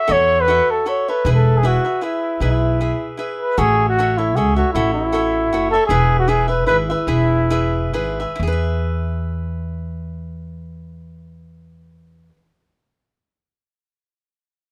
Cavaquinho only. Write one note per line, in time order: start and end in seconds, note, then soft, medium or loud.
0.07 0.47 F#4 medium
0.07 0.47 A4 medium
0.07 0.47 C#5 medium
0.07 0.49 E5 medium
0.48 0.84 F#4 medium
0.48 0.85 A4 medium
0.48 0.85 C#5 medium
0.48 0.87 E5 medium
0.86 1.07 F#4 soft
0.86 1.08 A4 medium
0.86 1.07 C#5 medium
0.86 1.07 E5 medium
1.08 1.26 A4 soft
1.08 1.26 C#5 soft
1.08 1.25 E5 medium
1.26 1.63 E4 medium
1.26 1.63 G#4 medium
1.26 1.63 B4 medium
1.26 1.64 E5 medium
1.63 1.84 E4 medium
1.63 1.85 G#4 medium
1.63 1.84 B4 medium
1.63 1.83 E5 medium
1.85 2.01 G#4 soft
1.85 2.01 B4 soft
1.85 2.02 E5 soft
2.01 2.41 E4 soft
2.01 2.40 G#4 medium
2.01 2.40 B4 medium
2.01 2.42 E5 medium
2.41 2.80 E4 medium
2.41 2.80 G#4 medium
2.41 2.80 B4 medium
2.41 2.81 E5 medium
2.81 3.17 E4 soft
2.81 3.17 G#4 medium
2.81 3.18 B4 medium
2.81 3.19 E5 medium
3.17 3.57 E4 soft
3.17 3.57 G#4 soft
3.17 3.58 B4 medium
3.17 3.58 E5 medium
3.57 3.97 F#4 medium
3.57 3.97 A4 medium
3.57 3.97 C#5 medium
3.57 4.00 E5 medium
3.98 4.19 F#4 medium
3.98 4.18 A4 medium
3.98 4.17 C#5 medium
3.98 4.17 E5 medium
4.18 4.36 A4 soft
4.18 4.36 C#5 soft
4.18 4.36 E5 medium
4.36 4.58 F#4 medium
4.36 4.57 A4 medium
4.36 4.56 C#5 soft
4.36 4.55 E5 medium
4.56 4.74 A4 soft
4.56 4.75 C#5 soft
4.56 4.74 E5 soft
4.75 5.11 F#4 medium
4.75 5.12 A4 medium
4.75 5.13 C#5 medium
4.75 5.14 E5 medium
5.12 5.51 F#4 medium
5.12 5.52 A4 medium
5.12 5.52 C#5 medium
5.12 5.54 E5 medium
5.53 5.73 F#4 medium
5.53 5.74 A4 medium
5.53 5.73 C#5 medium
5.53 5.72 E5 medium
5.74 5.90 A4 soft
5.74 5.90 C#5 soft
5.74 5.89 E5 medium
5.90 6.27 E4 medium
5.90 6.28 G#4 medium
5.90 6.28 B4 medium
5.90 6.28 E5 medium
6.28 6.50 E4 medium
6.28 6.49 G#4 medium
6.28 6.48 B4 medium
6.28 6.47 E5 medium
6.48 6.67 G#4 soft
6.48 6.67 B4 soft
6.48 6.67 E5 soft
6.67 6.89 E4 medium
6.67 6.90 G#4 soft
6.67 6.90 B4 medium
6.67 6.89 E5 medium
6.90 7.06 G#4 soft
6.90 7.07 B4 medium
6.90 7.07 E5 medium
7.08 7.50 E4 medium
7.08 7.50 G#4 medium
7.08 7.51 B4 medium
7.08 7.51 E5 medium
7.50 7.93 E4 medium
7.50 7.93 G#4 medium
7.50 7.94 B4 medium
7.50 7.94 E5 medium
7.93 8.20 E4 medium
7.93 8.20 G#4 medium
7.93 8.19 B4 medium
7.93 8.19 E5 medium
8.20 8.42 G#4 soft
8.20 8.42 B4 soft
8.20 8.41 E5 medium
8.36 12.29 E4 medium
8.43 12.36 G#4 medium
8.47 12.41 B4 medium
8.52 12.46 E5 medium